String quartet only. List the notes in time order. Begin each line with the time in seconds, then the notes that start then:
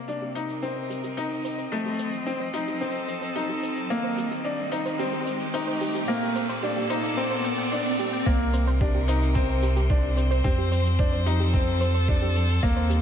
Already playing: C3 A#3
0.20 C4
0.46 A#4
0.51 D#5
1.72 F3
2.70 A4
3.90 D#3
4.88 G4
6.08 A#2
6.29 A4
6.53 A#3
7.07 D5
8.26 C3
8.44 C4 A#4
9.25 C5
10.45 F3
11.43 A4
12.63 D#3